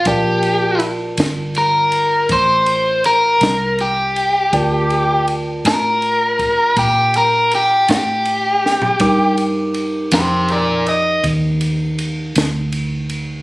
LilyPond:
<<
  \new Staff \with { instrumentName = "Overdriven electric guitar" } { \time 12/8 \key g \minor \tempo 4. = 54 g'4 r4 bes'4 c''4 bes'4 g'4~ | g'4 r8 bes'4. g'8 bes'8 g'8 g'4.~ | g'8 r4 <g' c''>8 <bes' d''>8 ees''8 r2. | }
  \new Staff \with { instrumentName = "Tine electric piano" } { \time 12/8 \key g \minor <f' bes' d'' a''>1. | <f' bes' d'' a''>1. | <ees' g' bes' d'''>1. | }
  \new Staff \with { instrumentName = "Fingered electric bass" } { \clef bass \time 12/8 \key g \minor bes,,4. g,,4. a,,4. c,4. | d,4. a,4. bes,4. a,4. | g,4. f,4. ees,4. d,4. | }
  \new DrumStaff \with { instrumentName = "Drums" } \drummode { \time 12/8 <bd cymr>8 cymr8 cymr8 <cymr sn>8 cymr8 cymr8 <bd cymr>8 cymr8 cymr8 <cymr sn>8 cymr8 cymr8 | <bd cymr>8 cymr8 cymr8 <cymr sn>8 cymr8 <bd cymr>8 <bd cymr>8 cymr8 cymr8 <cymr sn>8 cymr8 sn16 tomfh16 | <bd cymr>8 cymr8 cymr8 <cymr sn>8 cymr8 cymr8 <bd cymr>8 cymr8 cymr8 <cymr sn>8 cymr8 cymr8 | }
>>